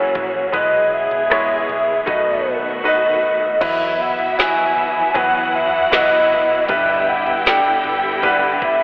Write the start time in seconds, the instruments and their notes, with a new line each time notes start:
Already playing: fingered electric bass F#1, string section E3 A#3 C#4 F#4, grand piano F#3 C#4 E4 G#4 A#4, ocarina C#5
0.15 fingered electric bass A#1, kick
0.52 fingered electric bass B1, grand piano B2 G#3 B3 E4 B4, string section G#3 B3 G#4, ocarina D#5, kick, floor tom
0.94 ocarina E5
1.11 fingered electric bass B1, floor tom
1.30 grand piano G#3 B3 E4 C#5, cross-stick
1.69 fingered electric bass B1, ocarina E5, floor tom
2.06 fingered electric bass B1, grand piano B2 A3 D#4 F#4 B4, string section D#3 A3 F#4, ocarina D#5, kick, floor tom
2.84 grand piano A3 D#4 F#4 B4, ocarina D#5
3.61 fingered electric bass E2, string section E3 F#3 B3 E4, grand piano F#3 B3 E4 B4, violin section E4 E5, ocarina E5, kick, floor tom, crash
4.02 ocarina F#5
4.19 floor tom
4.39 grand piano F#3 B3 E4 F#4, ocarina G#5, snare, tambourine
4.77 floor tom
5.14 fingered electric bass E2, grand piano F#3 B3 E4 B4, violin section F#4 F#5, ocarina F#5, kick, floor tom
5.55 ocarina E5
5.92 grand piano F#3 B3 E4 B4, ocarina D#5, snare, tambourine
6.30 fingered electric bass E1, floor tom
6.69 fingered electric bass G1, grand piano G2 G3 D4 G4 B4, string section D3 G3, violin section G4 G5, ocarina E5, kick, floor tom
7.09 ocarina F#5
7.26 fingered electric bass G1, floor tom
7.46 grand piano G3 D4 G4 A4, ocarina G5, snare, tambourine
7.84 fingered electric bass G1, floor tom
8.22 grand piano G3 D4 G4 B4, ocarina F#5, kick, floor tom
8.62 ocarina E5, kick